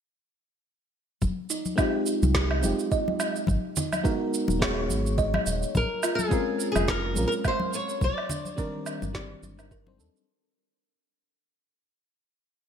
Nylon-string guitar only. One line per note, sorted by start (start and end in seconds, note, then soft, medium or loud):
5.77 6.15 A#4 medium
6.15 6.67 G#4 medium
6.72 6.90 G#4 medium
6.90 7.24 A#4 medium
7.28 7.33 A#4 medium
7.48 7.74 C5 medium
7.75 8.00 C#5 medium
8.04 9.97 D5 medium